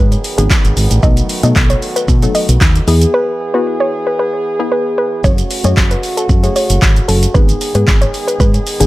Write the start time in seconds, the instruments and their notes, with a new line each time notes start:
Already playing: fingered electric bass G#2, french horn section D#3 F#3 B3 G#4
0.12 closed hi-hat, shaker
0.24 open hi-hat, shaker
0.38 fingered electric bass G#1, synth pluck B3 D#4 G#4, closed hi-hat, shaker
0.51 kick, snare, clap, shaker
0.64 fingered electric bass G#1, closed hi-hat, shaker
0.77 fingered electric bass G#1, open hi-hat, shaker
0.91 fingered electric bass A1, closed hi-hat, shaker
1.03 fingered electric bass B1, synth pluck F#3 A3 B3 D#4 A4 D#5, french horn section A3 F#4, kick, shaker
1.17 closed hi-hat, shaker
1.29 open hi-hat, shaker
1.43 fingered electric bass B2, synth pluck F#3 A3 B3 D#4 A4 D#5, closed hi-hat, shaker
1.56 fingered electric bass B1, kick, snare, clap, shaker
1.70 synth pluck C#5, closed hi-hat, shaker
1.82 open hi-hat, shaker
1.96 synth pluck B4, closed hi-hat, shaker
2.08 fingered electric bass B2, kick, shaker
2.22 synth pluck F#3 A3 B3 D#4 A4, closed hi-hat, shaker
2.35 synth pluck D#5, open hi-hat, shaker
2.49 fingered electric bass B1, closed hi-hat, shaker
2.61 fingered electric bass D#2, kick, snare, clap, shaker
2.76 closed hi-hat, shaker
2.87 fingered electric bass E2, french horn section E3 B3 G#4, synth pluck B3 E4 G#4, open hi-hat, shaker
3.02 closed hi-hat, shaker
3.14 synth pluck B4
3.54 synth pluck B3 E4 F#4 B4
3.80 synth pluck C#5
4.07 synth pluck B4
4.19 synth pluck B4
4.59 synth pluck B3 E4 G#4
4.72 synth pluck B4
4.98 synth pluck B4
5.24 fingered electric bass F#1, french horn section C#3 A3 F#4, synth pluck A3 C#4 F#4 G#4 C#5, kick, shaker
5.38 closed hi-hat, shaker
5.51 open hi-hat, shaker
5.64 fingered electric bass F#2, synth pluck A3 C#4 F#4 G#4 C#5 D#5, closed hi-hat, shaker
5.77 fingered electric bass F#1, kick, snare, clap, shaker
5.91 synth pluck B4, closed hi-hat, shaker
6.03 open hi-hat, shaker
6.17 synth pluck A4, closed hi-hat, shaker
6.29 fingered electric bass F#2, kick, shaker
6.43 synth pluck A3 C#4 F#4 G#4 C#5, closed hi-hat, shaker
6.56 synth pluck C#5, open hi-hat, shaker
6.70 fingered electric bass F#1, closed hi-hat, shaker
6.82 fingered electric bass G#1, kick, snare, clap, shaker
6.96 closed hi-hat, shaker
7.08 fingered electric bass F#1, synth pluck A4, open hi-hat, shaker
7.23 closed hi-hat, shaker
7.34 fingered electric bass G#1, french horn section D#3 G#3 B3 G#4, synth pluck B3 D#4 G#4 B4, kick, shaker
7.49 closed hi-hat, shaker
7.61 open hi-hat, shaker
7.75 fingered electric bass G#2, synth pluck B3 D#4 G#4 B4, closed hi-hat, shaker
7.87 fingered electric bass G#1, kick, snare, clap, shaker
8.01 synth pluck C#5, closed hi-hat, shaker
8.14 open hi-hat, shaker
8.27 synth pluck B4, closed hi-hat, shaker
8.40 fingered electric bass G#2, synth pluck B4, kick, shaker
8.54 closed hi-hat, shaker
8.67 open hi-hat, shaker
8.80 fingered electric bass G#1, synth pluck B3 D#4 G#4, closed hi-hat, shaker